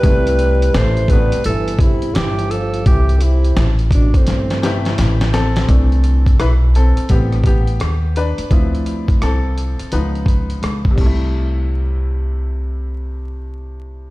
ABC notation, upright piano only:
X:1
M:4/4
L:1/8
Q:"Swing 16ths" 1/4=85
K:C
V:1 name="Upright piano"
z8 | z4 z [GB]2 [CA]- | [CA]2 [EB] [CA] G [B,G]2 [DB]- | [DB]2 [CA]2 _c3 z |
z8 |]
V:2 name="Upright piano"
[C,G,A,E]3 [C,G,A,B,] z4 | z4 z [C,G,A,E] z2 | [E,A,D]4 [G,B,C] z3 | [F,CE]4 [F,_C_E]3 [=C,G,A,=E]- |
[C,G,A,E]8 |]